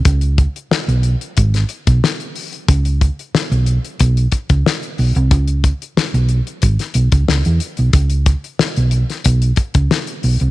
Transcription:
<<
  \new Staff \with { instrumentName = "Fingered electric bass" } { \clef bass \time 4/4 \key cis \minor \tempo 4 = 91 cis,8. r8 b,,8 r16 gis,,8 r16 b,,16 r4 | cis,8. r8 b,,8 r16 b,,8 r16 cis,16 r8 b,,16 bis,,16 | cis,8. r8 b,,8 r16 gis,,16 r16 b,,16 cis,16 cis,16 e,16 r16 b,,16 | cis,8. r8 b,,8 r16 b,,8 r16 cis,16 r8 b,,16 bis,,16 | }
  \new DrumStaff \with { instrumentName = "Drums" } \drummode { \time 4/4 <hh bd>16 hh16 <hh bd>16 hh16 sn16 hh16 hh16 hh16 <hh bd>16 <hh sn>16 hh16 <hh bd>16 sn16 hh16 hho16 hh16 | <hh bd>16 hh16 <hh bd>16 hh16 sn16 hh16 hh16 hh16 <hh bd>16 hh16 <hh bd>16 <hh bd>16 sn16 hh16 hho16 hh16 | <hh bd>16 hh16 <hh bd>16 hh16 sn16 hh16 hh16 hh16 <hh bd>16 <hh sn>16 hh16 <hh bd>16 sn16 hh16 hh16 hh16 | <hh bd>16 hh16 <hh bd>16 hh16 sn16 hh16 hh16 <hh sn>16 <hh bd>16 hh16 <hh bd>16 <hh bd>16 sn16 hh16 hho16 hh16 | }
>>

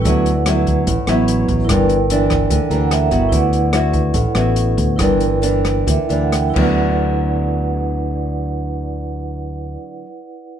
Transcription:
<<
  \new Staff \with { instrumentName = "Vibraphone" } { \time 4/4 \key d \major \tempo 4 = 140 << { r1 | r2 r8 bes''16 fis''16 e''4 | r1 | r4. d''8 e''8. fis''16 g''8 r8 |
r1 | r1 | } \\ { <e' b' d'' fis''>1 | <e' bes' d'' g''>1 | <e' b' d'' fis''>1 | <e' bes' d'' g''>2.~ <e' bes' d'' g''>8 <e' b' d'' fis''>8~ |
<e' b' d'' fis''>1~ | <e' b' d'' fis''>1 | } >> }
  \new Staff \with { instrumentName = "Nylon-string guitar" } { \time 4/4 \key d \major << { <fis b e'>8 r8 <fis b e'>4 r8 <fis b e'>4. | <e bes d'>8 r8 <e bes d'>4. <e bes d'>4 <b e' fis'>8~ | <b e' fis'>4 <b e' fis'>4 r8 <b e' fis'>4. | <e bes d'>4 <e bes d'>4. <e bes d'>4 <d fis b e'>8~ |
<d fis b e'>1~ | <d fis b e'>1 | } \\ { d2 a,2 | g,2 d2 | d2 a,2 | g,2 d4. r8 |
r1 | r1 | } >> }
  \new Staff \with { instrumentName = "Fingered electric bass" } { \clef bass \time 4/4 \key d \major d,2 a,,16 r16 a,,4 a,,8 | g,,2 d,16 r16 d,4 g,,8 | d,2 a,,16 r16 a,,4 d,8 | g,,2 d,16 r16 d,4 d,8~ |
d,1~ | d,1 | }
  \new DrumStaff \with { instrumentName = "Drums" } \drummode { \time 4/4 <hh bd>8 hh8 <hh ss>8 <hh bd>8 <hh bd>8 <hh ss>8 hh8 <hh bd>8 | <hh bd ss>8 hh8 hh8 <hh bd ss>8 <hh bd>8 hh8 <hh ss>8 <hh bd>8 | <hh bd>8 hh8 <hh ss>8 <hh bd>8 <hh bd>8 <hh ss>8 hh8 <hh bd>8 | <hh bd ss>8 hh8 hh8 <hh ss>8 <hh bd>8 hh8 <hh ss>8 <cymc bd>8 |
r4 r4 r4 r4 | r4 r4 r4 r4 | }
>>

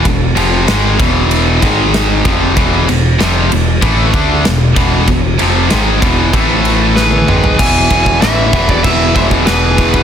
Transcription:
<<
  \new Staff \with { instrumentName = "Lead electric guitar" } { \time 4/4 \tempo 4 = 96 r1 | r1 | r2. b'4 | gis''4 e''8. d''16 e''8 e''8 b'4 | }
  \new Staff \with { instrumentName = "Lead electric guitar" } { \time 4/4 r1 | r1 | r2. gis'4 | e''4 b'8. b'16 b'8 c''8 gis'4 | }
  \new Staff \with { instrumentName = "Distorted electric guitar" } { \clef bass \time 4/4 <e, b,>8 <f, c f>8 <gis, dis gis>8 <e, b, e>4 <gis, dis gis>4 <f, c f>8 | <e, b, e>8 <e, b,>8 <f, c f>8 <e, b,>8 <a, e a>8 <d a d'>8 <e, b,>8 <e, b, e>8 | <e, b,>8 <f, c f>8 <gis, dis gis>8 <e, b, e>8 <a, e a>4. <gis, dis gis>8 | <e, b, e>8 <e, b, e>8 <e, b, e>8 <e, b, e>8 <e, b, e>8 <e, b, e>8 <e, b, e>8 <e, b, e>8 | }
  \new Staff \with { instrumentName = "Distorted electric guitar" } { \clef bass \time 4/4 <e, b,>8 <f, c f>8 <gis, dis gis>8 <e, b, e>4 <gis, dis gis>4 <f, c f>8 | <e, b, e>8 <e, b,>8 <f, c f>8 <e, b,>8 <a, e a>8 <d a d'>8 <e, b,>8 <e, b, e>8 | <e, b,>8 <f, c f>8 <gis, dis gis>8 <e, b, e>8 <a, e a>4. <gis, dis gis>8 | <e, b, e>8 <e, b, e>8 <e, b, e>8 <e, b, e>8 <e, b, e>8 <e, b, e>8 <e, b, e>8 <e, b, e>8 | }
  \new Staff \with { instrumentName = "Picked electric bass" } { \clef bass \time 4/4 e,,8 f,,8 gis,,8 e,,4 gis,,4 f,,8 | e,,8 e,,8 f,,8 e,,8 a,,8 d,8 e,,8 e,,8 | e,,8 f,,8 gis,,8 e,,8 a,,4. gis,,8 | e,,8 e,,8 a,,8 e,,8 e,,8 e,,8 e,,4 | }
  \new DrumStaff \with { instrumentName = "Drums" } \drummode { \time 4/4 <bd cymr>8 cymr8 <cymr sn>8 <bd cymr>8 cymr8 <bd cymr>8 <cymr sn>8 <bd cymr>8 | <bd cymr>8 cymr8 <cymr sn>8 cymr8 <bd cymr>8 <bd cymr>8 <cymr sn>8 <bd cymr>8 | <bd cymr>8 cymr8 <cymr sn>8 <bd cymr>8 <bd cymr>8 cymr8 sn16 tommh16 toml16 tomfh16 | <cymc bd>8 <cymc bd>16 bd16 <cymc sn>8 <cymc bd>16 bd16 <cymc bd>8 <cymc bd>16 bd16 <cymc sn>8 <cymc bd>16 bd16 | }
>>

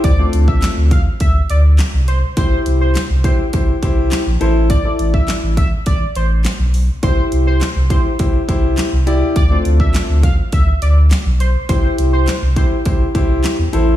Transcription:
<<
  \new Staff \with { instrumentName = "Analog synth lead" } { \time 4/4 \key c \major \tempo 4 = 103 d''8 r16 e''8 r16 f''16 r16 e''8 d''16 r8. c''16 r16 | c''8 r16 c''8 r16 c''16 r2 r16 | d''8 r16 e''8 r16 e''16 r16 d''8 c''16 r4 r16 | c''8 r16 c''8 r16 c''16 r2 r16 |
d''8 r16 e''8 r16 f''16 r16 e''8 d''16 r8. c''16 r16 | c''8 r16 c''8 r16 c''16 r2 r16 | }
  \new Staff \with { instrumentName = "Grand piano" } { \time 4/4 \key c \major r16 <a c' d' f' c''>4~ <a c' d' f' c''>16 r2 r8 | <e' g' c''>4 r8 <e' g' c''>16 r16 <e' g' c''>16 r16 <e' g' c''>8. r16 <e' a' c''>8 | r16 <e' a' d''>4~ <e' a' d''>16 r2 r8 | <e' g' c''>4 r8 <e' g' c''>16 r16 <e' g' c''>16 r16 <e' g' c''>8. r16 <e' g' d''>8 |
r16 <a c' d' f' c''>4~ <a c' d' f' c''>16 r2 r8 | <e' g' c''>4 r8 <e' g' c''>16 r16 <e' g' c''>16 r16 <e' g' c''>8. r16 <e' a' c''>8 | }
  \new Staff \with { instrumentName = "Sub bass" } { \clef bass \time 4/4 \key c \major d,8 d,8. d,8. d,8 d,8. c,8. | c,8 c,8. c,8. c,8 c,8. bes,,16 a,,8~ | a,,8 a,,8. a,,8. a,,8 a,,8. b,,8. | c,8 c,8. c,8. c,8 c,8. c,8. |
d,8 d,8. d,8. d,8 d,8. b,,8. | c,8 c,8. c,8. c,8 c,8. e,16 a,,8 | }
  \new DrumStaff \with { instrumentName = "Drums" } \drummode { \time 4/4 <hh bd>8 hh16 bd16 <hc hh sn>8 <hh bd>8 <hh bd>8 hh8 <hc hh sn>8 hh8 | <hh bd>8 hh8 <hc hh sn>8 <hh bd>8 <hh bd>8 <hh bd>8 <hc hh sn>8 hh8 | <hh bd>8 hh16 bd16 <hc hh sn>8 <hh bd>8 <hh bd>8 hh8 <hc hh sn>8 hho8 | <hh bd>8 hh8 <hc hh sn>8 <hh bd>8 <hh bd>8 <hh bd>8 <hc hh sn>8 hh8 |
<hh bd>8 hh16 bd16 <hc hh sn>8 <hh bd>8 <hh bd>8 hh8 <hc hh sn>8 hh8 | <hh bd>8 hh8 <hc hh sn>8 <hh bd>8 <hh bd>8 <hh bd>8 <hc hh sn>8 hh8 | }
>>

